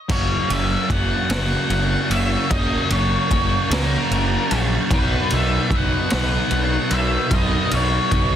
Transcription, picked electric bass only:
0.09 0.35 F#1 medium
0.50 0.75 F#1 medium
0.90 1.15 F#1 medium
1.29 1.55 F#1 loud
1.70 1.95 F#1 medium
2.10 2.35 F#1 medium
2.51 2.76 F#1 medium
2.90 3.16 F#1 medium
3.31 3.56 F#1 medium
3.70 3.96 C#2 loud
4.11 4.36 F#1 medium
4.52 4.77 A#1 medium
4.91 5.16 B1 medium
5.32 5.57 B1 medium
5.70 5.96 B1 medium
6.13 6.38 B1 loud
6.51 6.77 B1 medium
6.91 7.16 B1 medium
7.31 7.56 B1 medium
7.72 7.97 B1 medium
8.12 8.36 B1 medium

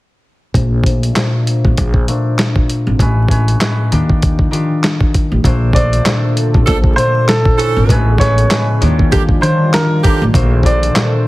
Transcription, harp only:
0.54 0.83 A#2 medium
0.54 0.83 A3 medium
0.54 0.83 D4 medium
0.54 0.84 C5 loud
0.85 1.14 A#2 medium
0.85 1.14 A3 medium
0.85 1.14 D4 medium
0.85 1.14 C5 loud
1.15 2.06 A#2 medium
1.15 2.08 A3 medium
1.15 2.08 D4 medium
1.15 2.09 C5 loud
2.07 3.05 A#2 medium
2.07 3.06 A3 medium
2.07 3.07 D4 medium
2.07 3.07 C5 medium
3.00 3.28 A2 medium
3.00 3.28 G#3 medium
3.00 3.29 C#4 medium
3.00 3.29 B4 loud
3.29 3.59 A2 medium
3.29 3.60 G#3 medium
3.29 3.59 C#4 medium
3.29 3.59 B4 medium
3.60 3.96 A2 medium
3.60 3.96 G#3 medium
3.60 3.92 C#4 medium
3.60 3.92 B4 loud
3.91 4.50 D#3 medium
3.91 4.49 D4 medium
3.91 4.49 F4 medium
3.91 4.49 G4 loud
4.51 5.50 D#3 medium
4.51 5.09 D4 medium
4.51 5.09 F4 medium
4.51 5.10 G4 loud
5.44 5.73 A#2 loud
5.44 5.73 A3 medium
5.44 5.73 D4 medium
5.44 5.74 C5 loud
5.74 6.04 A#2 medium
5.74 6.03 A3 medium
5.74 6.04 D4 medium
5.74 6.04 C5 loud
6.05 6.96 A#2 medium
6.05 6.97 A3 medium
6.05 6.98 D4 medium
6.05 6.98 C5 loud
6.97 7.94 A#2 medium
6.97 7.96 A3 medium
6.97 7.97 D4 medium
6.97 7.97 C5 loud
7.90 8.17 A2 medium
7.90 8.18 G#3 medium
7.90 8.19 C#4 medium
7.90 8.19 B4 loud
8.19 8.49 A2 medium
8.19 8.49 G#3 medium
8.19 8.48 C#4 medium
8.19 8.49 B4 loud
8.50 8.86 A2 medium
8.50 8.86 G#3 medium
8.50 8.81 C#4 medium
8.50 8.82 B4 loud
8.81 9.40 D#3 medium
8.81 9.38 D4 medium
8.81 9.39 F4 medium
8.81 9.39 G4 loud
9.41 10.39 D#3 loud
9.41 9.99 D4 medium
9.41 9.99 F4 medium
9.41 10.00 G4 loud
10.34 10.63 A#2 loud
10.34 10.63 A3 medium
10.34 10.63 D4 medium
10.34 10.63 C5 loud
10.64 10.94 A#2 medium
10.64 10.93 A3 medium
10.64 10.94 D4 medium
10.64 10.94 C5 loud
10.95 11.28 A#2 medium
10.95 11.28 A3 medium
10.95 11.28 D4 medium
10.95 11.28 C5 loud

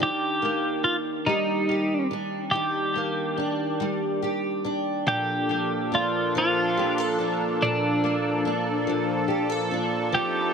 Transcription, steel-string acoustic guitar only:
0.00 2.52 D#3 medium
0.00 0.42 A#3 soft
0.00 2.10 D4 medium
0.00 1.68 G4 soft
0.42 2.95 A#3 soft
1.26 3.79 G3 medium
1.69 4.21 G4 medium
2.11 3.37 D4 medium
2.53 5.07 D#3 medium
2.95 5.49 A#3 soft
3.37 4.64 D4 soft
3.80 5.16 G3 medium
4.22 5.16 G4 medium
4.64 5.91 D4 soft
5.07 7.61 A#2 medium
5.49 8.03 A#3 soft
5.92 7.17 D4 soft
6.35 8.87 F3 medium
6.77 6.98 G4 medium
6.98 9.27 A4 soft
7.19 8.44 D4 medium
7.62 10.13 A#2 medium
8.04 10.21 A#3 soft
8.45 9.70 D4 soft
8.87 10.12 F3 medium
9.28 9.50 G4 medium
9.50 10.21 A4 soft
9.71 10.21 D4 medium
10.12 10.54 F3 medium

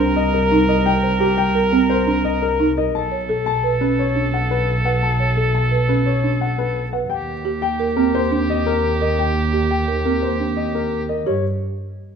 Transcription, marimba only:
0.00 0.22 D4 medium
0.52 0.74 D#4 medium
0.68 0.91 A#4 medium
1.03 1.26 C5 medium
1.20 1.43 G4 medium
1.55 1.78 A#4 medium
1.73 1.95 C4 medium
2.07 2.30 D4 medium
2.60 2.82 D#4 medium
2.77 2.99 A#4 medium
3.12 3.34 C#5 medium
3.29 3.51 A4 medium
3.64 3.86 B4 medium
3.81 4.03 C#4 medium
4.16 4.38 D4 medium
4.85 5.07 B4 soft
5.20 5.42 C#5 soft
5.37 5.59 A4 soft
5.72 5.94 B4 soft
5.89 6.11 C#4 soft
6.24 6.46 D4 soft
6.93 7.16 B4 soft
7.45 7.67 G4 medium
7.80 8.02 A#4 medium
7.97 8.19 C4 medium
8.32 8.54 D4 medium
9.01 9.23 A#4 medium
9.53 9.76 G4 soft
9.88 10.10 A#4 soft
10.05 10.28 C4 soft
10.40 10.62 D4 soft
11.09 11.32 A#4 soft
11.26 11.43 G4 medium

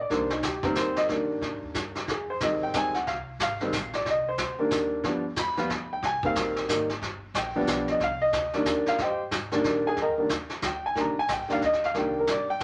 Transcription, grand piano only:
0.01 0.12 D5 medium
0.10 0.28 D#3 medium
0.10 0.29 G3 medium
0.10 0.29 A#3 medium
0.10 0.29 D4 medium
0.14 0.32 C5 medium
0.33 0.44 D#4 medium
0.45 0.64 G4 medium
0.64 1.07 D#3 medium
0.64 1.07 G3 medium
0.64 1.07 A#3 medium
0.64 1.07 C4 medium
0.64 0.76 A#4 medium
0.77 0.96 C5 medium
0.97 1.05 D#5 loud
1.09 2.00 D#3 medium
1.09 2.01 G3 soft
1.09 2.01 A#3 medium
1.09 2.01 D4 medium
2.11 2.29 G#4 medium
2.30 2.41 C5 medium
2.42 2.73 D#3 medium
2.42 2.73 G3 soft
2.42 2.73 G#3 soft
2.42 2.73 C4 medium
2.42 2.62 D#5 medium
2.63 2.74 G5 loud
2.75 2.92 D#3 medium
2.75 2.93 G3 medium
2.75 2.93 G#3 medium
2.75 2.93 C4 medium
2.75 2.95 G#5 loud
2.94 3.06 F#5 medium
3.07 3.19 F5 medium
3.43 3.91 F5 medium
3.61 3.72 D#3 medium
3.61 3.72 G3 medium
3.61 3.72 G#3 medium
3.61 3.72 C4 medium
3.95 4.06 D5 medium
4.10 4.27 D#5 medium
4.29 4.58 C5 medium
4.58 5.01 D#3 medium
4.58 5.02 G3 medium
4.58 5.02 A#3 medium
4.58 5.02 D4 medium
5.04 5.22 F3 medium
5.04 5.22 G3 medium
5.04 5.23 B3 medium
5.04 5.23 D4 medium
5.39 5.88 B5 loud
5.58 5.69 F3 medium
5.58 5.69 G3 medium
5.58 5.69 B3 medium
5.58 5.69 F4 medium
5.93 6.04 G5 medium
6.05 6.24 G#5 medium
6.23 6.66 D#3 medium
6.23 6.66 G3 medium
6.23 6.66 A#3 medium
6.23 6.67 C4 medium
6.23 6.55 F5 medium
6.68 6.87 D#3 medium
6.68 6.87 G3 medium
6.68 6.87 A#3 medium
6.68 6.87 D#4 medium
7.38 7.85 G5 medium
7.56 7.98 F3 medium
7.56 7.98 G3 medium
7.56 7.98 B3 medium
7.56 7.98 D4 medium
7.91 8.01 D#5 medium
8.03 8.21 F5 medium
8.22 8.51 D#5 loud
8.54 8.96 D#3 medium
8.54 8.96 G3 medium
8.54 8.97 A#3 medium
8.54 8.97 D4 medium
8.88 8.99 F4 medium
8.88 8.99 F5 loud
9.02 9.20 G4 medium
9.02 9.20 C5 medium
9.02 9.20 D#5 medium
9.02 9.20 G5 medium
9.52 9.94 D#3 medium
9.52 9.95 G3 medium
9.52 9.95 A#3 medium
9.52 9.95 D4 medium
9.87 9.99 G#4 medium
9.87 9.98 G#5 medium
10.02 10.13 A#4 medium
10.02 10.13 D#5 medium
10.02 10.13 G5 medium
10.02 10.13 A#5 medium
10.18 10.29 D#3 medium
10.18 10.29 G3 medium
10.18 10.29 A#3 medium
10.18 10.29 D4 medium
10.66 10.84 G5 medium
10.86 10.97 G#5 medium
10.95 11.14 D#3 medium
10.95 11.14 G3 medium
10.95 11.14 A#3 medium
10.95 11.14 D4 medium
11.00 11.17 A#5 medium
11.19 11.30 G#5 loud
11.32 11.50 G5 medium
11.48 11.60 D#3 medium
11.48 11.60 G3 medium
11.48 11.60 A#3 medium
11.48 11.61 D4 medium
11.53 11.63 F5 medium
11.65 11.83 D#5 loud
11.85 11.96 F5 medium
11.94 12.43 D#3 medium
11.94 12.44 G3 medium
11.94 12.44 A#3 medium
11.94 12.44 D4 medium
11.98 12.16 G5 medium
12.20 12.29 A#4 medium
12.31 12.49 D5 medium
12.50 12.61 G5 loud

